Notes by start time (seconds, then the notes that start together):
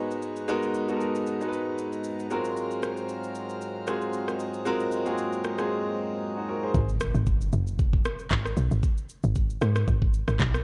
Already playing: G#2 G#3 B3 D#4 F#4 A#4 C#5 F#5 A#5
0.11 shaker
0.22 shaker
0.36 shaker
0.48 G#3 B3 D#4 F#4 A#4, shaker
0.63 shaker
0.74 shaker
0.88 G#3 B3 D#4 F#4 A4, shaker
0.96 A#4
1.01 shaker
1.15 shaker
1.26 shaker
1.41 G#3 B3 D#4 F#4 A#4, shaker
1.48 B4
1.53 shaker
1.78 shaker
1.93 shaker
2.04 shaker
2.20 shaker
2.31 F#3 G#3 C4 F4 F#4 A#4 F5, shaker
2.45 shaker
2.57 shaker
2.71 shaker
2.83 cross-stick, shaker
2.97 shaker
3.09 shaker
3.24 shaker
3.35 shaker
3.49 shaker
3.62 shaker
3.87 G#3 C4 F4 F#4 G#4, cross-stick, shaker
4.01 shaker
4.13 shaker
4.28 cross-stick, shaker
4.39 D#5, shaker
4.54 shaker
4.65 G#3 C4 F4 F#4 A#4, shaker
4.80 shaker
4.92 shaker
5.05 G#3 A#3 F4 F#4 G#4, shaker
5.12 C4
5.18 shaker
5.32 shaker
5.44 cross-stick, shaker
5.58 G#3 C4 F4 F#4 G#4, cross-stick, shaker
6.37 D#4 F#4
6.49 F#4 A#4
6.63 G#4 C5
6.74 G#1, kick, impact, shaker
6.89 shaker
7.00 cross-stick, shaker
7.15 G#1, shaker
7.27 kick, shaker
7.41 shaker
7.53 F#1, shaker
7.67 shaker
7.79 kick, shaker
7.93 kick
8.05 cross-stick, shaker
8.19 shaker
8.30 G#1, kick, clap, shaker
8.46 cross-stick, shaker
8.57 B1, shaker
8.71 G#1, shaker
8.83 kick, shaker
8.98 shaker
9.09 shaker
9.23 G#1, shaker
9.35 kick, shaker
9.50 shaker
9.61 G#2, cross-stick, shaker
9.76 cross-stick, shaker
9.88 G#1, kick, shaker
10.02 kick
10.14 shaker
10.28 G#1, cross-stick, shaker
10.39 B1, kick, clap, shaker
10.54 cross-stick, shaker